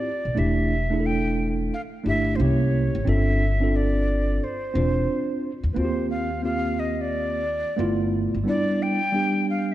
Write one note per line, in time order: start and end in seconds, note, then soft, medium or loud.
0.00 0.10 E4 medium
0.00 0.11 F4 medium
0.00 0.12 G4 medium
0.00 0.40 D5 loud
0.25 0.36 B1 medium
0.35 1.68 E1 medium
0.35 0.73 A3 medium
0.35 0.74 D4 medium
0.35 0.75 E4 medium
0.35 0.75 G4 medium
0.35 1.07 E5 loud
0.90 1.73 A3 medium
0.90 1.73 D4 medium
0.90 1.74 E4 medium
0.90 0.98 G#4 medium
1.00 1.78 A4 medium
1.06 1.47 G5 loud
1.74 1.81 F5 medium
2.04 2.35 G1 medium
2.04 2.38 A3 medium
2.04 2.39 D4 medium
2.04 2.39 E4 medium
2.04 2.40 G4 medium
2.08 2.37 E5 medium
2.36 2.87 C2 loud
2.36 2.96 A#3 medium
2.36 2.97 C#4 medium
2.36 2.43 C5 medium
2.40 2.97 E4 medium
2.40 2.98 G4 medium
2.40 3.10 C#5 medium
2.95 3.05 G#1 medium
3.05 4.38 G1 medium
3.05 3.43 C4 medium
3.05 3.44 D4 medium
3.05 3.45 F4 medium
3.05 3.45 A4 medium
3.05 3.77 E5 medium
3.60 4.42 C4 medium
3.60 4.43 D4 medium
3.60 4.44 F4 medium
3.60 4.44 A4 medium
3.76 4.45 D5 medium
4.44 5.44 C5 medium
4.74 5.04 E1 medium
4.74 5.50 C4 medium
4.74 5.50 D4 medium
4.74 5.51 F4 medium
4.74 5.51 C5 medium
5.63 5.74 E2 medium
5.73 7.62 D#2 medium
5.73 6.28 A#3 medium
5.73 6.29 C4 medium
5.73 5.79 B4 medium
5.77 6.30 F4 medium
5.77 5.86 F#4 medium
5.77 6.09 C5 medium
5.85 6.34 G4 medium
6.10 6.41 F5 medium
6.42 7.42 A#3 medium
6.42 7.42 C4 medium
6.42 7.43 F4 medium
6.42 7.43 G4 medium
6.42 6.81 F5 loud
6.79 7.03 D#5 medium
7.01 8.14 D5 medium
7.76 8.27 G1 medium
7.76 8.35 A3 medium
7.76 8.36 B3 medium
7.76 8.36 E4 medium
7.76 8.37 F4 medium
8.34 8.45 G1 medium
8.44 8.98 G3 medium
8.44 8.98 B3 medium
8.44 8.99 D4 medium
8.44 9.00 E4 medium
8.48 8.84 D5 loud
8.82 9.48 G5 loud
9.12 9.74 G3 medium
9.12 9.74 B3 medium
9.12 9.74 D4 medium
9.12 9.74 G4 medium
9.50 9.73 F5 loud